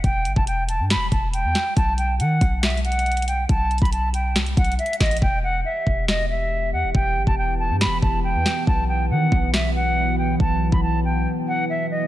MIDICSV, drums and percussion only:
0, 0, Header, 1, 2, 480
1, 0, Start_track
1, 0, Key_signature, 1, "minor"
1, 0, Tempo, 431655
1, 44, Time_signature, 4, 2, 24, 8
1, 13423, End_track
2, 0, Start_track
2, 0, Title_t, "Drums"
2, 44, Note_on_c, 9, 36, 112
2, 44, Note_on_c, 9, 42, 66
2, 155, Note_off_c, 9, 42, 0
2, 156, Note_off_c, 9, 36, 0
2, 281, Note_on_c, 9, 42, 60
2, 392, Note_off_c, 9, 42, 0
2, 404, Note_on_c, 9, 36, 96
2, 516, Note_off_c, 9, 36, 0
2, 525, Note_on_c, 9, 42, 78
2, 636, Note_off_c, 9, 42, 0
2, 762, Note_on_c, 9, 42, 80
2, 874, Note_off_c, 9, 42, 0
2, 1004, Note_on_c, 9, 42, 69
2, 1005, Note_on_c, 9, 38, 119
2, 1116, Note_off_c, 9, 42, 0
2, 1117, Note_off_c, 9, 38, 0
2, 1243, Note_on_c, 9, 42, 65
2, 1244, Note_on_c, 9, 36, 98
2, 1355, Note_off_c, 9, 36, 0
2, 1355, Note_off_c, 9, 42, 0
2, 1485, Note_on_c, 9, 42, 65
2, 1596, Note_off_c, 9, 42, 0
2, 1724, Note_on_c, 9, 38, 91
2, 1725, Note_on_c, 9, 42, 72
2, 1836, Note_off_c, 9, 38, 0
2, 1836, Note_off_c, 9, 42, 0
2, 1964, Note_on_c, 9, 36, 114
2, 1964, Note_on_c, 9, 42, 65
2, 2075, Note_off_c, 9, 42, 0
2, 2076, Note_off_c, 9, 36, 0
2, 2201, Note_on_c, 9, 42, 59
2, 2312, Note_off_c, 9, 42, 0
2, 2445, Note_on_c, 9, 42, 78
2, 2556, Note_off_c, 9, 42, 0
2, 2683, Note_on_c, 9, 36, 85
2, 2683, Note_on_c, 9, 42, 80
2, 2794, Note_off_c, 9, 42, 0
2, 2795, Note_off_c, 9, 36, 0
2, 2924, Note_on_c, 9, 42, 70
2, 2925, Note_on_c, 9, 38, 123
2, 3005, Note_off_c, 9, 42, 0
2, 3005, Note_on_c, 9, 42, 57
2, 3036, Note_off_c, 9, 38, 0
2, 3084, Note_off_c, 9, 42, 0
2, 3084, Note_on_c, 9, 42, 43
2, 3165, Note_off_c, 9, 42, 0
2, 3165, Note_on_c, 9, 42, 40
2, 3245, Note_off_c, 9, 42, 0
2, 3245, Note_on_c, 9, 42, 52
2, 3325, Note_off_c, 9, 42, 0
2, 3325, Note_on_c, 9, 42, 65
2, 3405, Note_off_c, 9, 42, 0
2, 3405, Note_on_c, 9, 42, 41
2, 3465, Note_off_c, 9, 42, 0
2, 3465, Note_on_c, 9, 42, 51
2, 3525, Note_off_c, 9, 42, 0
2, 3525, Note_on_c, 9, 42, 62
2, 3585, Note_off_c, 9, 42, 0
2, 3585, Note_on_c, 9, 42, 70
2, 3645, Note_off_c, 9, 42, 0
2, 3645, Note_on_c, 9, 42, 73
2, 3756, Note_off_c, 9, 42, 0
2, 3884, Note_on_c, 9, 36, 112
2, 3884, Note_on_c, 9, 42, 70
2, 3995, Note_off_c, 9, 42, 0
2, 3996, Note_off_c, 9, 36, 0
2, 4125, Note_on_c, 9, 42, 36
2, 4204, Note_off_c, 9, 42, 0
2, 4204, Note_on_c, 9, 42, 50
2, 4244, Note_on_c, 9, 36, 99
2, 4284, Note_off_c, 9, 42, 0
2, 4284, Note_on_c, 9, 42, 58
2, 4355, Note_off_c, 9, 36, 0
2, 4364, Note_off_c, 9, 42, 0
2, 4364, Note_on_c, 9, 42, 78
2, 4476, Note_off_c, 9, 42, 0
2, 4602, Note_on_c, 9, 42, 80
2, 4714, Note_off_c, 9, 42, 0
2, 4844, Note_on_c, 9, 42, 62
2, 4845, Note_on_c, 9, 38, 121
2, 4956, Note_off_c, 9, 38, 0
2, 4956, Note_off_c, 9, 42, 0
2, 4964, Note_on_c, 9, 42, 58
2, 5076, Note_off_c, 9, 42, 0
2, 5084, Note_on_c, 9, 36, 98
2, 5085, Note_on_c, 9, 42, 65
2, 5165, Note_off_c, 9, 42, 0
2, 5165, Note_on_c, 9, 42, 51
2, 5195, Note_off_c, 9, 36, 0
2, 5245, Note_off_c, 9, 42, 0
2, 5245, Note_on_c, 9, 42, 37
2, 5325, Note_off_c, 9, 42, 0
2, 5325, Note_on_c, 9, 42, 41
2, 5405, Note_off_c, 9, 42, 0
2, 5405, Note_on_c, 9, 42, 57
2, 5485, Note_off_c, 9, 42, 0
2, 5485, Note_on_c, 9, 42, 70
2, 5565, Note_off_c, 9, 42, 0
2, 5565, Note_on_c, 9, 36, 85
2, 5565, Note_on_c, 9, 38, 90
2, 5565, Note_on_c, 9, 42, 45
2, 5565, Note_on_c, 9, 46, 76
2, 5625, Note_off_c, 9, 42, 0
2, 5625, Note_on_c, 9, 42, 56
2, 5676, Note_off_c, 9, 36, 0
2, 5676, Note_off_c, 9, 38, 0
2, 5677, Note_off_c, 9, 46, 0
2, 5685, Note_off_c, 9, 42, 0
2, 5685, Note_on_c, 9, 42, 66
2, 5745, Note_off_c, 9, 42, 0
2, 5745, Note_on_c, 9, 42, 74
2, 5805, Note_on_c, 9, 36, 108
2, 5856, Note_off_c, 9, 42, 0
2, 5916, Note_off_c, 9, 36, 0
2, 6524, Note_on_c, 9, 36, 83
2, 6635, Note_off_c, 9, 36, 0
2, 6765, Note_on_c, 9, 38, 121
2, 6877, Note_off_c, 9, 38, 0
2, 7724, Note_on_c, 9, 36, 110
2, 7836, Note_off_c, 9, 36, 0
2, 8084, Note_on_c, 9, 36, 96
2, 8195, Note_off_c, 9, 36, 0
2, 8685, Note_on_c, 9, 38, 120
2, 8796, Note_off_c, 9, 38, 0
2, 8924, Note_on_c, 9, 36, 97
2, 9035, Note_off_c, 9, 36, 0
2, 9404, Note_on_c, 9, 38, 91
2, 9515, Note_off_c, 9, 38, 0
2, 9644, Note_on_c, 9, 36, 116
2, 9755, Note_off_c, 9, 36, 0
2, 10363, Note_on_c, 9, 36, 84
2, 10475, Note_off_c, 9, 36, 0
2, 10605, Note_on_c, 9, 38, 121
2, 10716, Note_off_c, 9, 38, 0
2, 11565, Note_on_c, 9, 36, 110
2, 11676, Note_off_c, 9, 36, 0
2, 11924, Note_on_c, 9, 36, 94
2, 12036, Note_off_c, 9, 36, 0
2, 13423, End_track
0, 0, End_of_file